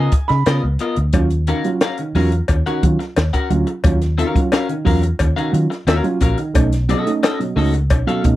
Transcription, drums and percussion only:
0.12 kick loud
0.12 closed hi-hat medium
0.29 snare soft
0.29 closed hi-hat soft
0.46 snare loud
0.46 closed hi-hat medium
0.46 cowbell medium
0.79 closed hi-hat medium
0.96 closed hi-hat medium
1.13 kick loud
1.13 closed hi-hat medium
1.13 cowbell medium
1.30 closed hi-hat medium
1.47 closed hi-hat medium
1.64 closed hi-hat medium
1.81 snare loud
1.81 closed hi-hat medium
1.81 cowbell medium
1.98 closed hi-hat medium
2.15 open hi-hat medium
2.32 closed hi-hat medium
2.48 kick medium
2.48 closed hi-hat medium
2.48 cowbell medium
2.67 closed hi-hat soft
2.83 kick loud
2.83 closed hi-hat medium
3.00 snare soft
3.00 closed hi-hat soft
3.16 snare loud
3.16 closed hi-hat medium
3.16 cowbell medium
3.34 kick medium
3.34 closed hi-hat soft
3.50 closed hi-hat medium
3.67 closed hi-hat soft
3.84 kick loud
3.84 closed hi-hat medium
3.84 cowbell medium
4.02 snare soft
4.02 closed hi-hat medium
4.19 closed hi-hat medium
4.36 kick medium
4.36 closed hi-hat medium
4.52 snare loud
4.52 closed hi-hat medium
4.52 cowbell medium
4.69 closed hi-hat medium
4.87 kick loud
4.87 open hi-hat medium
5.03 closed hi-hat medium
5.19 kick medium
5.19 closed hi-hat medium
5.19 cowbell medium
5.38 closed hi-hat soft
5.54 closed hi-hat medium
5.72 snare soft
5.72 closed hi-hat soft
5.87 snare loud
5.87 closed hi-hat medium
5.87 cowbell medium
6.04 closed hi-hat soft
6.21 kick medium
6.21 closed hi-hat medium
6.38 closed hi-hat soft
6.55 kick loud
6.55 closed hi-hat medium
6.55 cowbell medium
6.72 snare soft
6.72 closed hi-hat medium
6.89 closed hi-hat medium
7.07 closed hi-hat medium
7.23 snare loud
7.23 closed hi-hat medium
7.23 cowbell medium
7.40 closed hi-hat medium
7.58 open hi-hat medium
7.73 closed hi-hat medium
7.90 kick loud
7.90 closed hi-hat medium
7.90 cowbell medium
8.09 closed hi-hat medium
8.24 kick loud
8.24 closed hi-hat medium

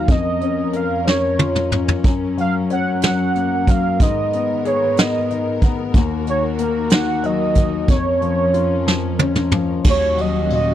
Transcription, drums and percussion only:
0.08 kick loud
0.08 closed hi-hat medium
0.41 closed hi-hat soft
0.73 closed hi-hat medium
1.07 snare soft
1.39 high tom medium
1.55 mid tom medium
1.72 mid tom medium
1.88 floor tom medium
2.04 kick loud
2.04 closed hi-hat medium
2.38 closed hi-hat medium
2.70 closed hi-hat medium
3.02 snare medium
3.02 closed hi-hat medium
3.35 closed hi-hat soft
3.67 kick medium
3.67 closed hi-hat medium
4.00 kick loud
4.00 closed hi-hat medium
4.33 closed hi-hat medium
4.65 closed hi-hat medium
4.97 snare loud
4.97 closed hi-hat medium
5.30 closed hi-hat soft
5.62 kick medium
5.62 closed hi-hat medium
5.94 kick loud
5.94 closed hi-hat medium
6.27 closed hi-hat medium
6.58 closed hi-hat medium
6.90 snare loud
6.90 closed hi-hat medium
7.23 closed hi-hat soft
7.55 kick medium
7.55 closed hi-hat medium
7.88 kick loud
7.88 closed hi-hat medium
8.22 closed hi-hat medium
8.54 closed hi-hat medium
8.88 snare medium
9.19 high tom medium
9.35 mid tom medium
9.52 mid tom medium
9.84 kick loud
9.84 crash loud
10.18 ride soft
10.50 ride medium

